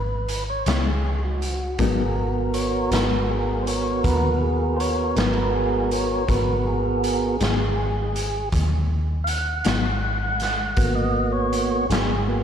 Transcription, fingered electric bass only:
0, 0, Header, 1, 2, 480
1, 0, Start_track
1, 0, Key_signature, 5, "minor"
1, 0, Tempo, 748130
1, 1150, Time_signature, 12, 3, 24, 8
1, 7978, End_track
2, 0, Start_track
2, 0, Title_t, "Fingered electric bass"
2, 0, Program_c, 0, 33
2, 0, Note_on_c, 0, 32, 81
2, 403, Note_off_c, 0, 32, 0
2, 426, Note_on_c, 0, 37, 77
2, 1123, Note_off_c, 0, 37, 0
2, 1146, Note_on_c, 0, 32, 90
2, 1843, Note_off_c, 0, 32, 0
2, 1868, Note_on_c, 0, 32, 84
2, 2565, Note_off_c, 0, 32, 0
2, 2595, Note_on_c, 0, 39, 74
2, 3288, Note_off_c, 0, 39, 0
2, 3311, Note_on_c, 0, 32, 85
2, 4007, Note_off_c, 0, 32, 0
2, 4036, Note_on_c, 0, 32, 99
2, 4729, Note_off_c, 0, 32, 0
2, 4753, Note_on_c, 0, 32, 90
2, 5447, Note_off_c, 0, 32, 0
2, 5469, Note_on_c, 0, 39, 83
2, 6165, Note_off_c, 0, 39, 0
2, 6196, Note_on_c, 0, 32, 73
2, 6889, Note_off_c, 0, 32, 0
2, 6911, Note_on_c, 0, 32, 86
2, 7606, Note_off_c, 0, 32, 0
2, 7634, Note_on_c, 0, 32, 91
2, 7978, Note_off_c, 0, 32, 0
2, 7978, End_track
0, 0, End_of_file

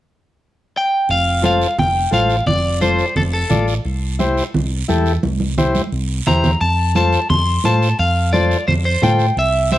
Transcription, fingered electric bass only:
0, 0, Header, 1, 2, 480
1, 0, Start_track
1, 0, Key_signature, -1, "major"
1, 0, Tempo, 345026
1, 1516, Time_signature, 4, 2, 24, 8
1, 13609, End_track
2, 0, Start_track
2, 0, Title_t, "Fingered electric bass"
2, 0, Program_c, 0, 33
2, 1520, Note_on_c, 0, 29, 88
2, 2286, Note_off_c, 0, 29, 0
2, 2473, Note_on_c, 0, 29, 92
2, 2858, Note_off_c, 0, 29, 0
2, 2951, Note_on_c, 0, 33, 83
2, 3337, Note_off_c, 0, 33, 0
2, 3422, Note_on_c, 0, 29, 92
2, 4195, Note_off_c, 0, 29, 0
2, 4387, Note_on_c, 0, 29, 96
2, 4774, Note_off_c, 0, 29, 0
2, 4869, Note_on_c, 0, 33, 86
2, 5256, Note_off_c, 0, 33, 0
2, 5357, Note_on_c, 0, 36, 92
2, 6125, Note_off_c, 0, 36, 0
2, 6325, Note_on_c, 0, 36, 99
2, 6705, Note_off_c, 0, 36, 0
2, 6805, Note_on_c, 0, 40, 87
2, 7185, Note_off_c, 0, 40, 0
2, 7283, Note_on_c, 0, 36, 85
2, 8048, Note_off_c, 0, 36, 0
2, 8240, Note_on_c, 0, 36, 89
2, 8622, Note_off_c, 0, 36, 0
2, 8725, Note_on_c, 0, 40, 81
2, 9105, Note_off_c, 0, 40, 0
2, 9197, Note_on_c, 0, 41, 96
2, 9964, Note_off_c, 0, 41, 0
2, 10156, Note_on_c, 0, 41, 99
2, 10539, Note_off_c, 0, 41, 0
2, 10638, Note_on_c, 0, 45, 76
2, 11020, Note_off_c, 0, 45, 0
2, 11117, Note_on_c, 0, 41, 99
2, 11884, Note_off_c, 0, 41, 0
2, 12074, Note_on_c, 0, 41, 100
2, 12458, Note_off_c, 0, 41, 0
2, 12547, Note_on_c, 0, 45, 81
2, 12934, Note_off_c, 0, 45, 0
2, 13030, Note_on_c, 0, 36, 96
2, 13609, Note_off_c, 0, 36, 0
2, 13609, End_track
0, 0, End_of_file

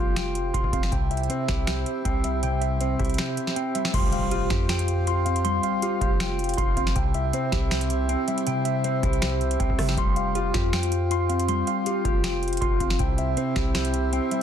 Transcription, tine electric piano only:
0, 0, Header, 1, 2, 480
1, 0, Start_track
1, 0, Tempo, 377358
1, 1169, Time_signature, 4, 2, 24, 8
1, 18351, End_track
2, 0, Start_track
2, 0, Title_t, "Tine electric piano"
2, 0, Program_c, 0, 4
2, 0, Note_on_c, 0, 65, 77
2, 0, Note_on_c, 0, 67, 92
2, 0, Note_on_c, 0, 77, 88
2, 0, Note_on_c, 0, 84, 117
2, 669, Note_off_c, 0, 84, 0
2, 685, Note_on_c, 0, 84, 94
2, 924, Note_off_c, 0, 77, 0
2, 939, Note_on_c, 0, 77, 84
2, 1166, Note_off_c, 0, 65, 0
2, 1167, Note_off_c, 0, 84, 0
2, 1170, Note_off_c, 0, 67, 0
2, 1174, Note_off_c, 0, 77, 0
2, 1174, Note_on_c, 0, 79, 112
2, 1413, Note_on_c, 0, 76, 90
2, 1660, Note_on_c, 0, 72, 91
2, 1895, Note_on_c, 0, 67, 85
2, 2600, Note_off_c, 0, 79, 0
2, 2615, Note_on_c, 0, 79, 99
2, 2840, Note_off_c, 0, 76, 0
2, 2855, Note_on_c, 0, 76, 84
2, 3080, Note_off_c, 0, 79, 0
2, 3094, Note_off_c, 0, 72, 0
2, 3095, Note_on_c, 0, 79, 111
2, 3306, Note_off_c, 0, 76, 0
2, 3321, Note_on_c, 0, 76, 84
2, 3331, Note_off_c, 0, 67, 0
2, 3572, Note_on_c, 0, 72, 87
2, 3812, Note_on_c, 0, 67, 84
2, 4514, Note_off_c, 0, 79, 0
2, 4529, Note_on_c, 0, 79, 99
2, 4752, Note_off_c, 0, 76, 0
2, 4767, Note_on_c, 0, 76, 82
2, 5008, Note_off_c, 0, 76, 0
2, 5009, Note_off_c, 0, 79, 0
2, 5010, Note_off_c, 0, 67, 0
2, 5010, Note_off_c, 0, 72, 0
2, 5017, Note_on_c, 0, 84, 113
2, 5248, Note_on_c, 0, 77, 96
2, 5490, Note_on_c, 0, 67, 89
2, 5731, Note_on_c, 0, 65, 88
2, 6441, Note_off_c, 0, 84, 0
2, 6456, Note_on_c, 0, 84, 101
2, 6667, Note_off_c, 0, 77, 0
2, 6683, Note_on_c, 0, 77, 97
2, 6912, Note_off_c, 0, 84, 0
2, 6927, Note_on_c, 0, 84, 118
2, 6929, Note_off_c, 0, 67, 0
2, 7155, Note_off_c, 0, 77, 0
2, 7170, Note_off_c, 0, 65, 0
2, 7170, Note_on_c, 0, 77, 96
2, 7409, Note_on_c, 0, 67, 92
2, 7640, Note_on_c, 0, 65, 79
2, 8348, Note_off_c, 0, 84, 0
2, 8363, Note_on_c, 0, 84, 98
2, 8600, Note_off_c, 0, 77, 0
2, 8616, Note_on_c, 0, 77, 89
2, 8844, Note_off_c, 0, 65, 0
2, 8846, Note_off_c, 0, 84, 0
2, 8849, Note_off_c, 0, 67, 0
2, 8852, Note_off_c, 0, 77, 0
2, 8852, Note_on_c, 0, 79, 116
2, 9091, Note_on_c, 0, 76, 92
2, 9339, Note_on_c, 0, 72, 95
2, 9573, Note_on_c, 0, 67, 88
2, 10279, Note_off_c, 0, 79, 0
2, 10294, Note_on_c, 0, 79, 104
2, 10518, Note_off_c, 0, 76, 0
2, 10534, Note_on_c, 0, 76, 87
2, 10759, Note_off_c, 0, 79, 0
2, 10774, Note_off_c, 0, 72, 0
2, 10775, Note_on_c, 0, 79, 112
2, 10985, Note_off_c, 0, 76, 0
2, 11000, Note_on_c, 0, 76, 85
2, 11011, Note_off_c, 0, 67, 0
2, 11250, Note_on_c, 0, 72, 94
2, 11491, Note_on_c, 0, 67, 86
2, 12194, Note_off_c, 0, 79, 0
2, 12209, Note_on_c, 0, 79, 102
2, 12432, Note_off_c, 0, 76, 0
2, 12447, Note_on_c, 0, 76, 82
2, 12688, Note_off_c, 0, 76, 0
2, 12689, Note_off_c, 0, 72, 0
2, 12689, Note_off_c, 0, 79, 0
2, 12690, Note_off_c, 0, 67, 0
2, 12698, Note_on_c, 0, 84, 112
2, 12930, Note_on_c, 0, 77, 94
2, 13172, Note_on_c, 0, 67, 92
2, 13411, Note_on_c, 0, 65, 88
2, 14122, Note_off_c, 0, 84, 0
2, 14137, Note_on_c, 0, 84, 104
2, 14348, Note_off_c, 0, 77, 0
2, 14364, Note_on_c, 0, 77, 93
2, 14594, Note_off_c, 0, 84, 0
2, 14610, Note_off_c, 0, 67, 0
2, 14610, Note_on_c, 0, 84, 116
2, 14836, Note_off_c, 0, 77, 0
2, 14850, Note_off_c, 0, 65, 0
2, 14851, Note_on_c, 0, 77, 97
2, 15092, Note_on_c, 0, 67, 93
2, 15322, Note_on_c, 0, 65, 79
2, 16026, Note_off_c, 0, 84, 0
2, 16041, Note_on_c, 0, 84, 99
2, 16281, Note_off_c, 0, 77, 0
2, 16297, Note_on_c, 0, 77, 87
2, 16525, Note_off_c, 0, 65, 0
2, 16525, Note_off_c, 0, 84, 0
2, 16530, Note_off_c, 0, 67, 0
2, 16533, Note_off_c, 0, 77, 0
2, 16533, Note_on_c, 0, 79, 117
2, 16771, Note_on_c, 0, 76, 93
2, 17018, Note_on_c, 0, 72, 94
2, 17251, Note_on_c, 0, 67, 85
2, 17959, Note_off_c, 0, 79, 0
2, 17974, Note_on_c, 0, 79, 100
2, 18197, Note_off_c, 0, 76, 0
2, 18212, Note_on_c, 0, 76, 82
2, 18351, Note_off_c, 0, 67, 0
2, 18351, Note_off_c, 0, 72, 0
2, 18351, Note_off_c, 0, 76, 0
2, 18351, Note_off_c, 0, 79, 0
2, 18351, End_track
0, 0, End_of_file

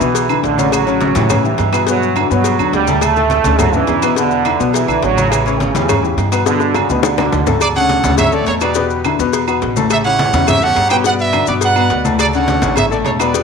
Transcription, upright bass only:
0, 0, Header, 1, 2, 480
1, 0, Start_track
1, 0, Key_signature, 2, "major"
1, 0, Tempo, 286807
1, 1217, Time_signature, 4, 2, 24, 8
1, 22476, End_track
2, 0, Start_track
2, 0, Title_t, "Upright bass"
2, 0, Program_c, 0, 32
2, 13, Note_on_c, 0, 35, 94
2, 685, Note_off_c, 0, 35, 0
2, 725, Note_on_c, 0, 33, 96
2, 1840, Note_off_c, 0, 33, 0
2, 1942, Note_on_c, 0, 45, 100
2, 2610, Note_off_c, 0, 45, 0
2, 2660, Note_on_c, 0, 43, 85
2, 3769, Note_off_c, 0, 43, 0
2, 3862, Note_on_c, 0, 43, 93
2, 4307, Note_off_c, 0, 43, 0
2, 4342, Note_on_c, 0, 40, 70
2, 4550, Note_off_c, 0, 40, 0
2, 4560, Note_on_c, 0, 38, 88
2, 5680, Note_off_c, 0, 38, 0
2, 5782, Note_on_c, 0, 38, 100
2, 6452, Note_off_c, 0, 38, 0
2, 6490, Note_on_c, 0, 40, 93
2, 7606, Note_off_c, 0, 40, 0
2, 7700, Note_on_c, 0, 35, 101
2, 8148, Note_off_c, 0, 35, 0
2, 8167, Note_on_c, 0, 35, 73
2, 8398, Note_off_c, 0, 35, 0
2, 8418, Note_on_c, 0, 33, 90
2, 9530, Note_off_c, 0, 33, 0
2, 9619, Note_on_c, 0, 40, 94
2, 10291, Note_off_c, 0, 40, 0
2, 10330, Note_on_c, 0, 43, 88
2, 11446, Note_off_c, 0, 43, 0
2, 11540, Note_on_c, 0, 38, 94
2, 12211, Note_off_c, 0, 38, 0
2, 12264, Note_on_c, 0, 38, 90
2, 13372, Note_off_c, 0, 38, 0
2, 13467, Note_on_c, 0, 38, 96
2, 14134, Note_off_c, 0, 38, 0
2, 14179, Note_on_c, 0, 40, 95
2, 15288, Note_off_c, 0, 40, 0
2, 15382, Note_on_c, 0, 40, 99
2, 16050, Note_off_c, 0, 40, 0
2, 16104, Note_on_c, 0, 33, 92
2, 17209, Note_off_c, 0, 33, 0
2, 17293, Note_on_c, 0, 40, 111
2, 17964, Note_off_c, 0, 40, 0
2, 18018, Note_on_c, 0, 43, 91
2, 19125, Note_off_c, 0, 43, 0
2, 19210, Note_on_c, 0, 43, 107
2, 19881, Note_off_c, 0, 43, 0
2, 19927, Note_on_c, 0, 38, 88
2, 21039, Note_off_c, 0, 38, 0
2, 21118, Note_on_c, 0, 33, 105
2, 21794, Note_off_c, 0, 33, 0
2, 21842, Note_on_c, 0, 28, 96
2, 22476, Note_off_c, 0, 28, 0
2, 22476, End_track
0, 0, End_of_file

